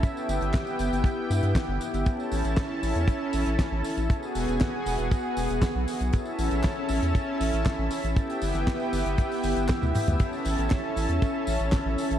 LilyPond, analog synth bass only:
\new Staff \with { instrumentName = "Analog synth bass" } { \clef bass \time 4/4 \key a \major \tempo 4 = 118 r8 g,,16 g,,16 r8 g,,16 g,,16 r8 g,16 g,16 r16 g,,16 r16 g,,16 | r8 a,,16 a,,16 r8 a,,16 e,16 r8 a,,16 a,,16 r16 a,,16 r16 a,,16 | r8 e,,16 e,,16 r8 e,,16 e,,16 r8 e,,16 e,,16 r16 b,,16 r16 b,,16 | r8 a,,16 a,,16 r8 a,,16 e,16 r8 a,,16 a,,16 r16 a,,16 r16 a,,16 |
r8 g,,16 g,,16 r8 g,,16 g,,16 r8 g,,16 g,,16 r16 d,16 r16 d,16 | r8 a,,16 a,,16 r8 a,,16 e,16 r8 a,,16 a,,16 r16 a,,16 r16 a,,16 | }